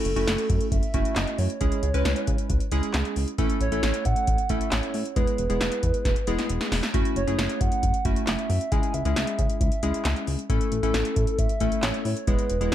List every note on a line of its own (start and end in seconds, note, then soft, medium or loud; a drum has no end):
0.00 0.11 A3 medium
0.00 0.11 C#4 medium
0.00 0.11 E4 medium
0.00 0.11 F#4 medium
0.00 0.68 A4 loud
0.05 0.14 F#1 loud
0.05 closed hi-hat medium
0.16 0.26 F#1 loud
0.16 0.81 A3 medium
0.16 0.81 C#4 medium
0.16 0.81 E4 medium
0.16 0.81 F#4 medium
0.16 closed hi-hat medium
0.27 0.37 F#1 loud
0.27 snare loud
0.27 closed hi-hat medium
0.38 closed hi-hat medium
0.50 0.59 F#2 loud
0.50 kick medium
0.50 closed hi-hat medium
0.61 closed hi-hat medium
0.72 0.81 F#1 loud
0.72 1.18 E5 loud
0.72 kick loud
0.72 closed hi-hat medium
0.83 closed hi-hat soft
0.94 1.03 F#1 loud
0.94 1.50 A3 medium
0.94 1.50 C#4 medium
0.94 1.50 E4 medium
0.94 1.50 F#4 medium
0.94 kick medium
0.94 closed hi-hat medium
1.05 closed hi-hat medium
1.16 1.26 F#1 loud
1.16 1.40 D#5 loud
1.16 snare loud
1.16 clap loud
1.16 closed hi-hat medium
1.27 closed hi-hat soft
1.38 1.48 F#2 loud
1.38 2.72 C#5 loud
1.38 open hi-hat medium
1.50 closed hi-hat medium
1.61 1.70 C#2 loud
1.61 1.89 G#3 medium
1.61 1.89 C#4 medium
1.61 1.89 E4 medium
1.61 1.89 G#4 medium
1.61 kick loud
1.61 closed hi-hat medium
1.72 closed hi-hat medium
1.83 1.92 C#2 loud
1.83 closed hi-hat medium
1.94 2.03 C#2 loud
1.94 2.59 G#3 medium
1.94 2.59 C#4 medium
1.94 2.59 E4 medium
1.94 2.59 B4 loud
1.94 closed hi-hat medium
2.05 2.14 C#2 loud
2.05 snare loud
2.05 closed hi-hat medium
2.16 closed hi-hat medium
2.27 2.37 C#3 loud
2.27 kick medium
2.27 closed hi-hat medium
2.38 closed hi-hat medium
2.49 2.59 C#2 loud
2.49 kick loud
2.49 closed hi-hat medium
2.60 closed hi-hat medium
2.72 2.81 C#2 medium
2.72 3.28 G#3 medium
2.72 3.28 C#4 medium
2.72 3.28 E4 medium
2.72 3.28 G#4 loud
2.72 closed hi-hat medium
2.83 closed hi-hat medium
2.94 3.03 C#2 loud
2.94 snare loud
2.94 clap loud
2.94 closed hi-hat medium
3.05 closed hi-hat soft
3.16 3.26 C#2 loud
3.16 open hi-hat medium
3.28 closed hi-hat medium
3.38 3.48 A1 loud
3.38 3.66 A3 loud
3.38 3.66 C#4 medium
3.38 3.66 E4 medium
3.38 3.66 A4 loud
3.38 kick loud
3.38 closed hi-hat medium
3.50 closed hi-hat medium
3.61 3.70 A1 loud
3.61 4.07 C#5 loud
3.61 closed hi-hat medium
3.72 3.81 A1 loud
3.72 4.37 A3 medium
3.72 4.37 C#4 medium
3.72 4.37 E4 medium
3.72 4.37 A4 medium
3.72 closed hi-hat medium
3.83 3.92 A1 loud
3.83 snare loud
3.83 closed hi-hat medium
3.94 closed hi-hat medium
4.05 4.15 A2 loud
4.05 4.51 F#5 loud
4.05 kick medium
4.05 closed hi-hat medium
4.16 closed hi-hat medium
4.27 4.37 A1 loud
4.27 kick loud
4.27 closed hi-hat medium
4.38 closed hi-hat soft
4.49 4.59 A1 medium
4.49 5.05 A3 medium
4.49 5.05 C#4 medium
4.49 5.05 E4 medium
4.49 5.05 A4 medium
4.49 4.73 E5 loud
4.49 kick medium
4.49 closed hi-hat medium
4.61 closed hi-hat medium
4.72 4.81 A1 loud
4.72 5.15 C#5 loud
4.72 snare loud
4.72 clap loud
4.72 closed hi-hat medium
4.83 closed hi-hat soft
4.94 5.03 A2 loud
4.94 open hi-hat medium
5.05 closed hi-hat medium
5.16 5.26 E1 loud
5.16 5.44 G#3 medium
5.16 5.44 B3 medium
5.16 5.44 E4 medium
5.16 5.44 G#4 medium
5.16 5.37 B4 medium
5.16 kick loud
5.16 closed hi-hat medium
5.27 closed hi-hat medium
5.38 5.48 E1 loud
5.38 6.68 B4 medium
5.38 closed hi-hat medium
5.50 5.59 E1 loud
5.50 6.15 G#3 medium
5.50 6.15 B3 medium
5.50 6.15 E4 medium
5.50 6.15 G#4 medium
5.50 closed hi-hat medium
5.61 5.70 E1 loud
5.61 snare loud
5.61 closed hi-hat medium
5.72 closed hi-hat medium
5.83 5.92 E2 loud
5.83 kick medium
5.83 closed hi-hat medium
5.94 closed hi-hat medium
6.05 6.14 E1 loud
6.05 kick loud
6.05 snare medium
6.05 closed hi-hat medium
6.16 closed hi-hat soft
6.27 6.37 E1 medium
6.27 6.83 G#3 medium
6.27 6.83 B3 medium
6.27 6.83 E4 medium
6.27 6.83 G#4 loud
6.27 closed hi-hat medium
6.39 snare medium
6.39 closed hi-hat medium
6.49 6.59 E1 loud
6.49 closed hi-hat medium
6.61 snare medium
6.61 closed hi-hat soft
6.72 6.81 E1 loud
6.72 snare loud
6.72 open hi-hat medium
6.83 snare loud
6.83 closed hi-hat medium
6.94 7.03 F#1 loud
6.94 7.22 A3 medium
6.94 7.22 C#4 medium
6.94 7.22 E4 medium
6.94 7.22 F#4 loud
6.94 kick loud
6.94 closed hi-hat medium
7.05 closed hi-hat medium
7.16 7.25 F#1 loud
7.16 7.62 C#5 medium
7.16 closed hi-hat medium
7.27 7.37 F#1 loud
7.27 7.92 A3 medium
7.27 7.92 C#4 medium
7.27 7.92 E4 medium
7.27 7.92 G#4 medium
7.27 closed hi-hat medium
7.38 7.48 F#1 loud
7.38 snare loud
7.38 closed hi-hat medium
7.49 closed hi-hat medium
7.61 7.70 F#2 loud
7.61 8.07 F#5 loud
7.61 kick medium
7.61 closed hi-hat medium
7.72 closed hi-hat medium
7.83 7.92 F#1 loud
7.83 kick loud
7.83 closed hi-hat medium
7.94 closed hi-hat medium
8.05 8.14 F#1 loud
8.05 8.61 A3 medium
8.05 8.61 C#4 medium
8.05 8.61 E4 medium
8.05 8.61 F#4 medium
8.05 8.27 E5 loud
8.05 kick medium
8.05 closed hi-hat medium
8.16 closed hi-hat medium
8.27 8.37 F#1 loud
8.27 8.73 E5 loud
8.27 snare loud
8.27 clap loud
8.27 closed hi-hat medium
8.39 closed hi-hat soft
8.50 8.59 F#2 loud
8.50 open hi-hat medium
8.61 closed hi-hat medium
8.72 8.81 C#2 loud
8.72 9.00 G#3 medium
8.72 9.00 C#4 medium
8.72 9.00 E4 medium
8.72 9.00 G#4 medium
8.72 8.95 G#5 loud
8.72 kick loud
8.72 closed hi-hat medium
8.83 closed hi-hat medium
8.94 9.03 C#2 loud
8.94 9.60 E5 loud
8.94 closed hi-hat medium
9.05 9.14 C#2 loud
9.05 9.70 G#3 medium
9.05 9.70 C#4 medium
9.05 9.70 E4 medium
9.05 9.70 G#4 medium
9.05 closed hi-hat medium
9.16 9.26 C#2 loud
9.16 snare loud
9.16 closed hi-hat medium
9.27 closed hi-hat medium
9.39 9.48 C#3 loud
9.39 kick medium
9.39 closed hi-hat medium
9.50 closed hi-hat medium
9.61 9.70 C#2 loud
9.61 10.23 E5 loud
9.61 kick loud
9.61 closed hi-hat medium
9.72 closed hi-hat soft
9.83 9.92 C#2 loud
9.83 10.39 G#3 medium
9.83 10.39 C#4 medium
9.83 10.39 E4 medium
9.83 10.39 G#4 medium
9.83 closed hi-hat medium
9.94 closed hi-hat medium
10.05 10.14 C#2 loud
10.05 snare loud
10.05 clap loud
10.05 closed hi-hat medium
10.16 closed hi-hat soft
10.27 10.37 C#2 loud
10.27 open hi-hat medium
10.39 closed hi-hat medium
10.50 10.59 A1 loud
10.50 10.77 A3 medium
10.50 10.77 C#4 medium
10.50 10.77 E4 medium
10.50 10.77 A4 medium
10.50 11.40 A4 loud
10.50 kick loud
10.50 closed hi-hat medium
10.61 closed hi-hat medium
10.72 10.81 A1 medium
10.72 closed hi-hat medium
10.83 10.92 A1 loud
10.83 11.48 A3 medium
10.83 11.48 C#4 medium
10.83 11.48 E4 medium
10.83 11.48 A4 medium
10.83 closed hi-hat medium
10.94 11.03 A1 loud
10.94 snare loud
10.94 closed hi-hat medium
11.05 closed hi-hat medium
11.16 11.26 A2 loud
11.16 kick medium
11.16 closed hi-hat medium
11.27 closed hi-hat medium
11.38 11.48 A1 loud
11.38 11.85 E5 loud
11.38 kick loud
11.38 closed hi-hat medium
11.49 closed hi-hat medium
11.60 11.70 A1 loud
11.60 12.16 A3 medium
11.60 12.16 C#4 medium
11.60 12.16 E4 medium
11.60 12.16 A4 medium
11.60 kick medium
11.60 closed hi-hat medium
11.72 closed hi-hat medium
11.83 11.92 A1 loud
11.83 12.05 C#5 loud
11.83 snare loud
11.83 clap loud
11.83 closed hi-hat medium
11.94 closed hi-hat soft
12.05 12.14 A2 loud
12.05 12.26 C#5 loud
12.05 open hi-hat medium
12.17 closed hi-hat medium
12.27 12.37 E1 loud
12.27 12.55 G#3 medium
12.27 12.55 B3 medium
12.27 12.55 E4 medium
12.27 12.55 G#4 medium
12.27 12.69 B4 loud
12.27 kick loud
12.27 closed hi-hat medium
12.39 closed hi-hat medium
12.50 12.59 E1 loud
12.50 closed hi-hat medium
12.61 12.70 E1 loud
12.61 12.75 G#3 medium
12.61 12.75 B3 medium
12.61 12.75 E4 medium
12.61 12.75 G#4 medium
12.61 closed hi-hat medium